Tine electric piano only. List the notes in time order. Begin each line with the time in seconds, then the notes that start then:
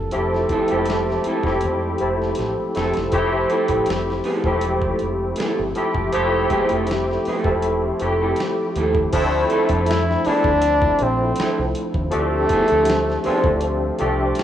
Already playing: E3 F3 A#3 C4 D4 A5
0.12 F3 A3 C4 E4 G4
0.70 F3 G#3 C4 E4 G4
0.76 A3
1.44 F3 A3 C4 E4 G4
2.00 F3 A3 C4 E4 A4
2.75 F3 A3 C4 E4 A4
3.12 F3 A3 C4 E4 G4
4.45 F3 G#3 C4 E4 G4
4.52 A3
5.76 F3 A3 C4 E4 G4
6.13 F3 A3 C4 E4 G4
7.45 F3 A3 C4 E4 A4
8.00 F3 A3 C4 E4 G4
9.13 F3 A3 C4 D4 E4
10.26 F3 A3 C4 D4 E4
11.00 F3 A3 C4 D4 F4
12.11 F3 A3 C4 D4 G4
13.25 F3 A3 C4 D4 F4
13.99 F3 A3 C4 D4 G4